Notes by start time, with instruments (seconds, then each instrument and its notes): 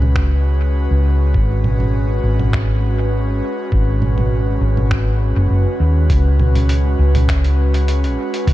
Already playing: fingered electric bass C#2, analog synth pad G#3 C#4 F#4 B4
0.02 low conga
0.16 finger snap, kick
0.91 fingered electric bass C#2
1.34 fingered electric bass G#1, kick
1.64 low conga
1.80 low conga
2.23 fingered electric bass G#1
2.40 low conga
2.53 finger snap, kick
3.72 fingered electric bass G#1, kick
4.02 low conga
4.18 low conga
4.61 fingered electric bass G#1
4.77 low conga
4.91 finger snap, kick
5.36 fingered electric bass F#1
5.50 fingered electric bass F#1
5.80 fingered electric bass D#2
6.10 fingered electric bass C#2, kick, closed hi-hat
6.40 low conga
6.55 closed hi-hat, low conga
6.69 closed hi-hat
6.99 fingered electric bass C#2
7.15 closed hi-hat, low conga
7.29 finger snap, kick, closed hi-hat
7.45 closed hi-hat
7.74 closed hi-hat
7.88 closed hi-hat
8.04 closed hi-hat
8.34 closed hi-hat
8.47 fingered electric bass C#2, kick, closed hi-hat